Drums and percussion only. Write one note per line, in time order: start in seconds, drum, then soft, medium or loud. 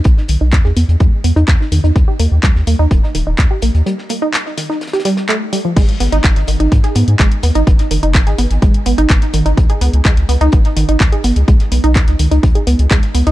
0.04 kick loud
0.04 closed hi-hat medium
0.17 snare soft
0.28 closed hi-hat medium
0.28 open hi-hat loud
0.53 kick loud
0.53 snare loud
0.53 clap loud
0.53 closed hi-hat medium
0.64 snare soft
0.77 closed hi-hat medium
0.77 open hi-hat medium
0.89 closed hi-hat soft
1.00 kick loud
1.00 closed hi-hat medium
1.24 closed hi-hat medium
1.24 open hi-hat loud
1.37 closed hi-hat soft
1.48 kick loud
1.48 snare loud
1.48 clap loud
1.48 closed hi-hat medium
1.61 snare medium
1.72 closed hi-hat medium
1.72 open hi-hat medium
1.85 closed hi-hat soft
1.96 kick loud
1.96 closed hi-hat medium
2.19 closed hi-hat medium
2.19 open hi-hat loud
2.43 kick loud
2.43 snare loud
2.43 clap loud
2.43 closed hi-hat medium
2.56 snare medium
2.67 closed hi-hat medium
2.67 open hi-hat medium
2.91 kick loud
2.91 closed hi-hat medium
3.03 snare soft
3.15 closed hi-hat medium
3.15 open hi-hat medium
3.38 kick loud
3.38 snare loud
3.38 clap loud
3.38 closed hi-hat medium
3.62 closed hi-hat medium
3.62 open hi-hat medium
3.75 closed hi-hat soft
3.86 closed hi-hat medium
3.98 snare medium
4.09 closed hi-hat medium
4.09 open hi-hat loud
4.33 snare loud
4.33 clap loud
4.33 closed hi-hat medium
4.46 snare soft
4.57 snare medium
4.57 closed hi-hat medium
4.57 open hi-hat medium
4.71 snare soft
4.81 snare medium
4.81 closed hi-hat medium
4.87 snare medium
4.87 closed hi-hat medium
4.93 snare medium
4.93 closed hi-hat medium
5.00 snare medium
5.00 closed hi-hat medium
5.05 snare medium
5.05 closed hi-hat medium
5.05 open hi-hat loud
5.17 snare medium
5.17 closed hi-hat medium
5.29 clap loud
5.29 closed hi-hat medium
5.53 closed hi-hat medium
5.53 open hi-hat medium
5.77 kick loud
5.77 closed hi-hat medium
5.77 crash medium
5.89 closed hi-hat medium
6.00 closed hi-hat medium
6.00 open hi-hat loud
6.12 closed hi-hat medium
6.24 kick loud
6.24 snare loud
6.24 clap loud
6.24 closed hi-hat medium
6.36 snare medium
6.36 closed hi-hat medium
6.47 closed hi-hat medium
6.47 open hi-hat medium
6.60 closed hi-hat medium
6.72 kick loud
6.72 closed hi-hat medium
6.83 snare soft
6.83 closed hi-hat medium
6.95 closed hi-hat medium
6.95 open hi-hat loud
7.08 closed hi-hat medium
7.19 kick loud
7.19 snare loud
7.19 clap loud
7.19 closed hi-hat medium
7.32 closed hi-hat medium
7.43 closed hi-hat medium
7.43 open hi-hat medium
7.55 closed hi-hat soft
7.55 closed hi-hat medium
7.67 kick loud
7.67 closed hi-hat medium
7.79 snare medium
7.79 closed hi-hat medium
7.91 closed hi-hat medium
7.91 open hi-hat loud
8.03 closed hi-hat medium
8.15 kick loud
8.15 snare loud
8.15 clap loud
8.15 closed hi-hat medium
8.27 snare soft
8.27 closed hi-hat medium
8.38 closed hi-hat medium
8.38 open hi-hat medium
8.51 closed hi-hat medium
8.51 closed hi-hat soft
8.62 kick loud
8.62 closed hi-hat medium
8.74 closed hi-hat medium
8.86 closed hi-hat medium
8.86 open hi-hat loud
8.98 closed hi-hat medium
8.98 closed hi-hat soft
9.09 kick loud
9.09 snare loud
9.09 clap loud
9.09 closed hi-hat medium
9.21 snare medium
9.21 closed hi-hat medium
9.33 closed hi-hat medium
9.33 open hi-hat medium
9.46 closed hi-hat soft
9.46 closed hi-hat medium
9.57 kick loud
9.57 closed hi-hat soft
9.57 closed hi-hat medium
9.70 closed hi-hat medium
9.81 closed hi-hat medium
9.81 open hi-hat loud
9.94 closed hi-hat medium
10.05 kick loud
10.05 snare loud
10.05 clap loud
10.05 closed hi-hat medium
10.17 snare soft
10.17 closed hi-hat medium
10.29 closed hi-hat medium
10.29 open hi-hat medium
10.41 closed hi-hat medium
10.52 kick loud
10.52 closed hi-hat medium
10.65 snare soft
10.65 closed hi-hat medium
10.77 closed hi-hat medium
10.77 open hi-hat loud
10.89 closed hi-hat medium
11.00 kick loud
11.00 snare loud
11.00 clap loud
11.00 closed hi-hat medium
11.12 closed hi-hat medium
11.24 closed hi-hat medium
11.24 open hi-hat medium
11.36 closed hi-hat medium
11.36 closed hi-hat soft
11.48 kick loud
11.48 closed hi-hat soft
11.48 closed hi-hat medium
11.60 snare soft
11.60 closed hi-hat medium
11.72 closed hi-hat medium
11.72 open hi-hat loud
11.84 closed hi-hat medium
11.95 kick loud
11.95 snare loud
11.95 clap loud
11.95 closed hi-hat medium
12.08 snare soft
12.08 closed hi-hat medium
12.19 closed hi-hat medium
12.19 open hi-hat medium
12.32 closed hi-hat medium
12.32 closed hi-hat soft
12.43 kick loud
12.43 closed hi-hat soft
12.43 closed hi-hat medium
12.55 closed hi-hat soft
12.67 closed hi-hat medium
12.67 open hi-hat loud
12.79 closed hi-hat soft
12.91 kick loud
12.91 snare loud
12.91 clap loud
12.91 closed hi-hat soft
12.91 closed hi-hat medium
13.03 snare soft
13.03 closed hi-hat medium
13.14 closed hi-hat medium
13.14 open hi-hat medium
13.27 closed hi-hat medium
13.27 closed hi-hat soft